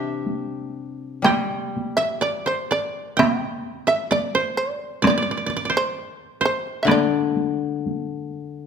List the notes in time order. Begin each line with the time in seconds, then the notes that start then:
Already playing: C3 E3 G3 C4 D4 G4 A4 C5 E5
0.27 taiko high
1.22 G3 G5, taiko rim, taiko high
1.77 taiko high
1.97 E5
2.21 D5
2.46 C5
2.71 D5
3.17 E5 G5, taiko rim, taiko high
3.40 G5
3.87 E5
4.11 D5, taiko high
4.35 C5
4.57 D5
5.02 D5, taiko rim, taiko high
5.07 D5
5.18 D5
5.22 D5
5.31 D5
5.37 D5
5.46 D5, taiko high
5.57 D5
5.65 D5
5.70 C5
5.77 C5
6.41 C5
6.45 C5
6.83 D3 E5
6.87 D5, taiko rim, taiko high
6.91 D5
7.36 taiko high
7.86 taiko high